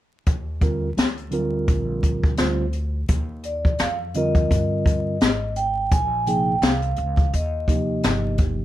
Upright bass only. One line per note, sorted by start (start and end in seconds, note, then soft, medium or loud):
0.27 0.94 D#2 medium
0.97 1.65 D2 medium
1.69 2.35 A#1 medium
2.39 3.06 D2 medium
3.09 3.76 D#2 loud
3.80 4.47 F2 medium
4.51 5.18 G2 medium
5.21 5.88 G#1 medium
5.92 6.59 A#1 medium
6.62 6.96 C2 medium
6.98 7.31 C#2 medium
7.33 8.00 D#2 loud
8.05 8.65 G1 loud